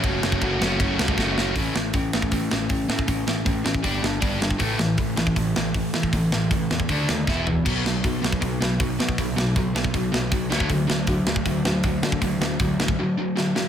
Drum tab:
CC |----------------|----------------|----------------|----------------|
RD |x---x---x-------|----------------|----------------|----------------|
HH |----------------|o---o---o---o---|o---o---o---o---|o---o---o---o---|
SD |--o---o---o-o-o-|--o---o---o---o-|--o---o---o---o-|--o---o---o---o-|
FT |----------------|----------------|----------------|----------------|
BD |o--oo---o--oo---|o---o--oo---o--o|o---o--oo---o--o|o---o--oo---o--o|

CC |----------------|x---------------|----------------|----------------|
RD |----------------|----------------|----------------|----------------|
HH |o---o---o-------|----o---o---o---|o---o---o---o---|o---o---o---o---|
SD |--o---o---o-o---|--o---o---o---o-|--o---o---o---o-|--o---o---o---o-|
FT |--------------o-|----------------|----------------|----------------|
BD |o---o--oo---o---|o---o--oo---o--o|o---o--oo---o--o|o---o--oo---o--o|

CC |----------------|
RD |----------------|
HH |o---o-----------|
SD |--o---o-----o-o-|
FT |----------------|
BD |o---o--o--------|